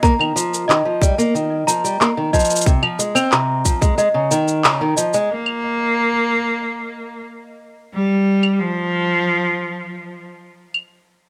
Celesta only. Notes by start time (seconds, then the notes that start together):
0.03 A#5
0.68 D#5
1.67 A#5
2.33 D#5
3.33 A#5
3.98 D#5
4.64 A#5
4.96 D#5